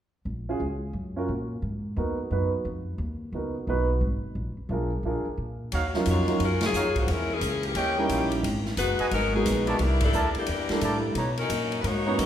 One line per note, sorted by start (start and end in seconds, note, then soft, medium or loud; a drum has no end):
0.25 0.59 A#1 medium
0.49 0.60 C#4 soft
0.49 0.60 F4 soft
0.49 0.60 F#4 soft
0.49 0.60 G#4 medium
0.60 0.93 C#2 medium
0.93 1.27 F#2 medium
1.16 1.28 C#4 soft
1.16 1.28 F4 soft
1.16 1.28 F#4 soft
1.16 1.28 A#4 medium
1.29 1.62 A#2 medium
1.62 1.96 G#2 medium
1.96 2.30 D#2 medium
1.96 2.16 B3 soft
1.96 2.17 D#4 soft
1.96 2.17 F#4 soft
1.96 2.17 A#4 medium
2.31 2.64 F#2 medium
2.31 2.51 B3 soft
2.31 2.51 D#4 soft
2.31 2.51 F#4 soft
2.31 2.51 B4 medium
2.65 2.98 F2 medium
2.98 3.32 D#2 medium
3.32 3.66 C#2 medium
3.32 3.54 B3 soft
3.32 3.54 D#4 soft
3.32 3.54 F#4 soft
3.32 3.55 A#4 soft
3.67 4.00 B1 medium
3.67 3.88 B3 soft
3.67 3.88 D#4 soft
3.67 3.88 F#4 soft
3.67 3.88 B4 medium
4.01 4.22 G#1 medium
4.23 muted upright bass stroke soft
4.35 4.56 A#1 medium
4.57 muted upright bass stroke soft
4.69 5.02 B1 medium
4.69 4.90 D4 soft
4.69 4.90 F4 soft
4.69 4.91 G#4 soft
4.69 4.91 A#4 medium
5.03 5.24 A#1 medium
5.03 5.24 D4 soft
5.03 5.24 F4 soft
5.03 5.25 G#4 soft
5.07 5.25 A#4 medium
5.26 muted upright bass stroke soft
5.37 5.71 A#2 medium
5.72 6.06 D#2 medium
5.72 5.87 D#4 medium
5.72 5.87 F#4 medium
5.72 5.87 C#5 medium
5.72 5.87 F5 medium
5.72 ride medium
5.94 6.26 F#3 medium
5.94 6.27 C#4 soft
5.94 6.27 D#4 medium
5.94 6.27 F4 medium
5.94 6.27 A#4 medium
5.94 snare soft
6.06 6.39 F2 medium
6.06 hi-hat pedal soft
6.06 ride medium
6.11 6.40 A#3 medium
6.11 6.40 F4 medium
6.11 6.40 F#4 medium
6.11 6.40 C#5 medium
6.28 6.39 F#3 medium
6.28 6.39 C#4 soft
6.28 6.39 D#4 soft
6.28 6.40 F4 soft
6.28 6.40 A#4 medium
6.28 ride soft
6.39 6.72 F#2 medium
6.39 ride soft
6.44 6.64 F#3 medium
6.44 6.64 C#4 medium
6.44 6.64 F4 medium
6.44 6.64 A#4 medium
6.61 snare medium
6.61 ride medium
6.66 6.96 F#3 medium
6.66 6.96 C#4 medium
6.66 6.96 F4 medium
6.66 6.96 G#4 medium
6.73 6.94 F2 medium
6.73 6.89 D#4 medium
6.73 6.89 F#4 medium
6.73 6.89 C#5 medium
6.73 6.89 F5 medium
6.73 hi-hat pedal medium
6.95 7.09 C#3 medium
6.95 7.09 A#3 medium
6.95 muted upright bass stroke soft
6.95 kick medium
6.95 ride soft
7.00 7.09 F3 medium
7.00 7.09 F#4 medium
7.07 7.40 E2 medium
7.07 ride medium
7.11 7.32 G#3 medium
7.11 7.32 C#4 medium
7.11 7.32 E4 medium
7.11 7.32 A#4 medium
7.34 7.65 E3 medium
7.34 7.65 A#3 medium
7.34 7.65 C#4 medium
7.34 7.66 G#4 medium
7.41 7.74 C#2 medium
7.41 hi-hat pedal medium
7.41 ride medium
7.63 7.96 E3 medium
7.63 7.96 A#3 medium
7.63 7.96 C#4 medium
7.63 7.96 G4 medium
7.63 ride soft
7.75 8.08 D#2 medium
7.75 8.28 C#5 medium
7.75 8.28 D#5 medium
7.75 8.27 G5 medium
7.75 ride medium
7.97 8.42 G3 medium
7.97 8.42 C#4 medium
7.97 8.42 D#4 soft
7.97 8.42 E4 medium
7.97 8.04 G#4 medium
7.97 8.43 A#4 medium
8.05 8.10 G4 medium
8.09 8.43 A#1 medium
8.09 8.21 F4 medium
8.09 hi-hat pedal medium
8.09 ride medium
8.21 8.32 G4 medium
8.32 ride soft
8.43 8.76 G#1 medium
8.43 ride medium
8.65 snare soft
8.77 8.98 F#1 medium
8.77 9.10 G#3 medium
8.77 9.10 D#4 medium
8.77 9.10 F#4 medium
8.77 9.10 B4 loud
8.77 hi-hat pedal medium
8.77 ride medium
8.99 9.08 F#4 medium
8.99 9.08 B4 medium
8.99 9.08 D#5 medium
8.99 9.08 G#5 medium
8.99 muted upright bass stroke soft
8.99 ride soft
9.11 9.45 G#1 medium
9.11 9.33 F#3 medium
9.11 9.33 B3 medium
9.11 9.33 D#4 medium
9.11 9.33 A#4 loud
9.11 ride medium
9.34 9.66 F#3 medium
9.34 9.78 G#3 medium
9.34 9.78 B3 soft
9.34 9.66 B3 medium
9.34 9.78 D#4 soft
9.34 9.66 D#4 medium
9.34 9.79 F#4 medium
9.34 9.66 G#4 medium
9.34 9.79 A#4 medium
9.46 9.79 A#1 medium
9.46 hi-hat pedal medium
9.46 ride medium
9.67 9.81 D#3 medium
9.67 9.80 G#3 medium
9.67 9.80 B3 medium
9.67 9.76 E4 medium
9.67 9.81 F#4 medium
9.67 9.76 A#4 medium
9.67 9.76 D5 medium
9.67 9.76 A5 medium
9.67 ride soft
9.79 10.13 C2 medium
9.79 10.03 G3 medium
9.79 10.03 D4 medium
9.79 10.03 E4 medium
9.79 10.03 A#4 medium
9.79 ride medium
10.01 10.35 D4 medium
10.01 10.35 E4 medium
10.01 10.35 A4 medium
10.01 kick medium
10.01 ride medium
10.05 10.35 G3 medium
10.13 10.34 D2 medium
10.13 10.29 E4 medium
10.13 10.29 A#4 medium
10.13 10.29 D5 medium
10.13 10.29 A5 medium
10.13 hi-hat pedal soft
10.35 11.01 E3 medium
10.35 11.01 A#3 medium
10.35 muted upright bass stroke soft
10.35 ride soft
10.39 11.02 D4 medium
10.39 11.02 G4 medium
10.46 10.68 E2 medium
10.46 ride medium
10.69 11.14 G3 medium
10.69 11.15 D4 soft
10.69 11.15 E4 soft
10.69 11.15 A4 medium
10.69 11.15 A#4 soft
10.69 muted upright bass stroke soft
10.69 snare soft
10.69 ride soft
10.81 11.14 A2 medium
10.81 10.97 E4 medium
10.81 10.97 A#4 medium
10.81 10.97 D5 medium
10.81 10.97 A5 medium
10.81 hi-hat pedal medium
10.81 ride medium
11.15 11.49 B2 medium
11.15 11.31 D#4 medium
11.15 11.31 B4 medium
11.15 11.31 C#5 medium
11.15 11.31 A#5 medium
11.15 ride medium
11.37 11.77 F#3 medium
11.37 11.77 C#4 medium
11.37 11.78 D#4 medium
11.37 11.77 A#4 medium
11.37 ride soft
11.50 11.83 A#2 medium
11.50 hi-hat pedal medium
11.50 ride medium
11.72 ride soft
11.81 12.17 G#2 medium
11.81 11.85 B4 medium
11.81 ride medium
11.85 12.19 A#3 medium
11.85 12.19 D#4 medium
11.85 12.18 F#4 medium
11.85 12.19 C#5 medium
12.06 12.26 A#3 medium
12.06 12.26 B3 soft
12.06 12.26 C#4 soft
12.06 12.15 D#4 medium
12.06 12.26 D#4 soft
12.06 12.26 F#4 medium
12.06 12.15 B4 medium
12.06 12.15 C#5 medium
12.06 12.15 A#5 medium
12.18 12.26 F#2 medium
12.18 12.26 C#4 medium
12.18 12.26 F#4 medium
12.18 12.26 A#4 medium
12.18 12.26 D#5 loud
12.18 hi-hat pedal medium
12.18 ride medium